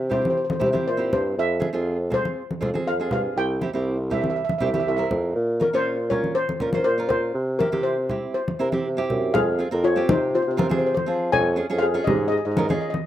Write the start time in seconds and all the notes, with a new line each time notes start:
Already playing: C3
0.10 C4 E4 G4 C5, low conga
0.22 C5, high conga
0.30 C5
0.37 C5
0.45 C5
0.50 C5, high conga
0.60 C3 C4 E4 G4 C5, low conga
0.66 C5
0.72 C4 E4 G4 C5, high conga
0.88 A#2 C5
0.97 C4 E4 G4
1.13 G2 C5, low conga
1.37 F2 E5
1.60 C4 F4 G#4, high conga
1.73 F2 C4 F4 G#4
2.10 C4 F4 G#4 C5, low conga
2.25 high conga
2.51 high conga
2.61 F2 C4 F4 G#4, low conga
2.74 C4 F4 G#4, high conga
2.86 F2 F5
3.00 C4 F4 G#4
3.11 G2 F5, low conga
3.36 C2 G5
3.61 C4 E4 G4, high conga
3.73 C2 C4 E4 G4
4.10 C4 E4 G4 E5, low conga
4.21 E5, high conga
4.30 E5
4.36 E5
4.45 E5
4.49 E5, high conga
4.58 C2 C4 E4 G4 E5, low conga
4.66 E5
4.74 C4 E4 G4 E5, high conga
4.80 E5
4.86 C2 E5
4.97 C4 E4 A#4 E5
5.11 F2, low conga
5.35 A#2
5.60 C#4 F4 A#4, high conga
5.73 A#2 C#4 F4 C5 C#5
6.10 C#4 F4 A#4 C#5, low conga
6.24 high conga
6.35 C5
6.49 high conga
6.60 A#2 C#4 F4 A#4, low conga
6.73 C#4 F4 A#4 C5, high conga
6.84 A#2 C5
6.98 C#4 F4 A#4
7.09 A#2 C5, low conga
7.35 C3
7.59 C4 E4 G4 A#4, high conga
7.72 C3 C4 E4 G4, high conga
7.83 C5
8.09 C4 E4 G4, low conga
8.34 C5
8.48 high conga
8.59 C3 C4 E4 A#4
8.72 C4 E4 G4, high conga
8.86 C3
8.97 C4 E4 G4
9.10 F#2, low conga
9.34 F2 G#4 F5, low conga
9.59 C4 F4 G#4
9.71 F2 C4 F4 A#4
9.84 F4 C#5
9.96 C4 F4 G4
10.09 C3 D#4 C5, high conga, low conga
10.35 F4 C5
10.42 C5
10.47 C3 C5
10.57 C4 F4 A#4 C5, high conga
10.63 C5
10.69 C4 F4 G#4 C5, high conga
10.79 C5
10.87 C5
10.94 C5, high conga
11.06 F3 C4 F4 G#4
11.32 F2 C#5 G#5, low conga
11.56 C#4 F4 G#4
11.70 F2 C#4 F4 G#4
11.79 G#4 F5
11.94 C#4 F4 G#4
12.04 G#2 G4 D#5, high conga, low conga
12.28 G#4 D#5
12.37 D#5
12.45 G#2 D#5
12.51 D#5
12.57 C#4 F4 A#4 D#5, high conga
12.67 C#4 F4 G#4 D#5, high conga
12.74 D#5
12.81 D#5
12.90 D#5, high conga